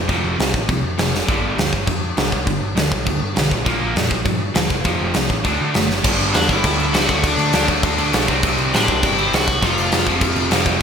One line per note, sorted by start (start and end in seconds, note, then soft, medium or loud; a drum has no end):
0.08 0.20 F1 medium
0.08 0.37 F2 medium
0.08 0.37 C3 medium
0.08 0.38 F3 medium
0.08 kick loud
0.08 crash medium
0.24 0.35 F1 medium
0.38 0.50 C2 medium
0.38 0.52 F2 medium
0.38 0.52 C3 medium
0.38 snare loud
0.38 crash medium
0.54 0.65 A1 medium
0.54 kick medium
0.69 0.80 C2 medium
0.69 0.82 F2 medium
0.69 0.82 C3 medium
0.69 kick loud
0.69 crash medium
0.83 0.94 F2 medium
0.97 1.20 F1 loud
0.97 1.11 F2 medium
0.97 1.12 C3 medium
0.97 snare loud
0.97 crash medium
1.15 snare medium
1.28 1.40 G1 medium
1.28 1.56 G2 medium
1.28 1.57 D3 loud
1.28 1.57 G3 loud
1.28 kick loud
1.28 crash medium
1.42 1.54 G1 medium
1.57 1.69 D2 medium
1.57 1.71 G2 medium
1.57 1.71 D3 medium
1.57 snare loud
1.57 crash medium
1.72 1.84 G1 medium
1.72 kick medium
1.87 2.10 F2 medium
1.87 2.01 G2 medium
1.87 2.01 D3 medium
1.87 kick loud
1.87 crash medium
2.17 2.29 C2 medium
2.17 2.31 G2 medium
2.17 2.31 D3 medium
2.17 snare loud
2.17 crash medium
2.32 2.43 C2 medium
2.32 kick medium
2.46 2.58 G1 medium
2.46 2.60 G2 medium
2.46 2.60 D3 medium
2.46 kick medium
2.46 crash medium
2.62 2.73 G1 medium
2.76 2.87 D2 medium
2.76 2.90 G2 medium
2.76 2.90 D3 medium
2.76 snare loud
2.76 crash medium
2.91 3.03 B1 medium
2.91 kick medium
3.06 3.17 D2 loud
3.06 3.20 G2 medium
3.06 3.20 D3 medium
3.06 kick loud
3.06 crash medium
3.22 3.33 G2 medium
3.35 3.48 B1 loud
3.35 3.49 G2 medium
3.35 3.50 D3 medium
3.35 snare loud
3.35 crash medium
3.51 3.62 A#1 medium
3.51 kick medium
3.65 3.77 A#1 loud
3.65 3.94 A#2 loud
3.65 3.94 F3 loud
3.65 3.95 A#3 loud
3.65 kick medium
3.65 crash medium
3.81 3.92 A#1 medium
3.95 4.07 F2 medium
3.95 4.09 A#2 medium
3.95 4.09 F3 medium
3.95 snare loud
3.95 crash medium
4.10 4.22 A#1 medium
4.10 kick medium
4.25 4.48 G2 medium
4.25 4.39 A#2 medium
4.25 4.39 F3 medium
4.25 kick loud
4.25 crash medium
4.54 4.66 D2 loud
4.54 4.69 A#2 medium
4.54 4.69 F3 medium
4.54 snare loud
4.54 crash medium
4.70 4.81 F1 loud
4.70 kick medium
4.84 4.96 F1 medium
4.84 5.14 F2 loud
4.84 5.14 C3 medium
4.84 5.14 F3 loud
4.84 kick loud
4.84 crash medium
5.01 5.12 F1 medium
5.14 5.27 C2 medium
5.14 5.29 F2 medium
5.14 5.29 C3 medium
5.14 snare loud
5.14 crash medium
5.30 5.41 A1 medium
5.30 kick medium
5.44 5.56 D2 medium
5.44 5.73 D3 medium
5.44 5.73 A3 medium
5.44 5.74 D4 medium
5.44 kick medium
5.44 crash medium
5.61 5.72 D3 loud
5.74 5.98 F#1 medium
5.74 5.88 D3 medium
5.74 5.88 A3 medium
5.74 snare loud
5.74 crash medium
5.90 snare medium
6.03 6.17 G1 loud
6.03 6.48 G2 medium
6.03 6.48 D3 loud
6.03 6.47 G3 loud
6.03 kick loud
6.03 crash loud
6.03 crash medium
6.20 6.32 G1 medium
6.20 crash medium
6.34 6.48 E2 medium
6.34 6.51 D4 medium
6.34 snare loud
6.34 crash medium
6.49 6.62 G1 medium
6.49 6.92 G2 medium
6.49 6.93 D3 medium
6.49 6.93 G3 medium
6.49 6.96 E4 loud
6.49 kick medium
6.49 crash medium
6.64 6.89 D2 medium
6.64 kick loud
6.64 crash medium
6.80 crash medium
6.93 7.07 C#2 loud
6.93 7.08 G2 medium
6.93 7.08 D3 medium
6.93 7.09 G3 medium
6.93 7.25 F#4 loud
6.93 snare loud
6.93 crash medium
7.09 7.21 D2 medium
7.09 7.51 D3 loud
7.09 7.52 A3 medium
7.09 7.54 D4 medium
7.09 kick medium
7.09 crash medium
7.24 7.37 D2 loud
7.24 7.67 D4 medium
7.24 kick loud
7.24 crash loud
7.38 7.51 D2 loud
7.38 crash medium
7.52 7.66 D2 loud
7.52 7.97 D3 medium
7.52 7.98 A3 medium
7.52 7.97 D4 medium
7.52 snare loud
7.52 crash medium
7.68 7.81 D2 medium
7.68 kick medium
7.68 crash medium
7.83 7.96 D2 medium
7.83 kick loud
7.83 crash medium
7.98 8.11 D2 loud
7.98 8.28 D3 medium
7.98 8.28 A3 medium
7.98 8.27 D4 medium
7.98 crash medium
8.13 8.28 B1 loud
8.13 snare loud
8.13 crash loud
8.28 8.41 C2 loud
8.28 8.72 C3 medium
8.28 8.72 G3 medium
8.28 8.74 C4 loud
8.28 kick medium
8.28 crash medium
8.43 8.56 C2 loud
8.43 kick loud
8.43 crash medium
8.58 8.71 C2 medium
8.58 crash medium
8.73 8.86 A2 loud
8.73 9.17 C3 medium
8.73 9.17 G3 medium
8.73 9.17 C4 loud
8.73 9.04 D4 medium
8.73 snare loud
8.73 crash medium
8.88 9.00 C2 medium
8.88 kick loud
8.88 crash medium
9.03 9.28 G1 loud
9.03 9.35 E4 loud
9.03 kick loud
9.03 crash medium
9.18 9.47 C3 medium
9.18 9.47 G3 medium
9.18 9.46 C4 medium
9.18 crash medium
9.33 9.58 C2 loud
9.33 9.65 F#4 loud
9.33 snare loud
9.33 crash medium
9.48 kick medium
9.48 crash medium
9.61 9.75 F1 loud
9.61 10.05 F2 loud
9.61 10.06 C3 medium
9.61 10.06 F3 loud
9.61 10.05 F4 medium
9.61 kick loud
9.61 crash medium
9.78 9.90 F1 medium
9.78 crash medium
9.92 10.05 F1 loud
9.92 snare loud
9.92 crash loud
10.06 10.19 F1 medium
10.06 10.49 F2 medium
10.06 10.50 C3 medium
10.06 10.50 F3 medium
10.06 kick medium
10.06 crash medium
10.21 10.34 F1 loud
10.21 kick loud
10.21 crash medium
10.36 10.49 F1 loud
10.36 crash medium
10.50 10.76 F1 loud
10.50 10.79 F2 medium
10.50 10.80 C3 medium
10.50 10.80 F3 medium
10.50 snare loud
10.50 crash loud
10.66 kick medium
10.66 crash medium